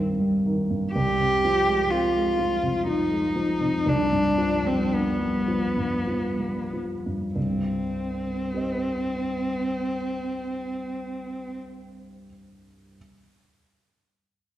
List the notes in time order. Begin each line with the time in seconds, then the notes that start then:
Already playing: C2 G2 D#3 G3 C4
0.20 G3
0.46 D#3
0.71 G2
0.93 C2 G4
1.20 C3
1.45 F3
1.67 G#3
1.91 C4 F4
2.16 G#3
2.39 F3
2.63 C3
2.87 F3 D#4
3.11 G#3
3.36 F3
3.61 C3
3.86 C2 D4
4.12 G2
4.38 F3
4.65 G3 C4
4.92 B3 D4
5.20 G3
5.48 F3
5.78 G2
6.07 F3
6.39 G3
6.73 F3
7.06 G2
7.35 C2 G2 C4
8.53 G4 C5 D#5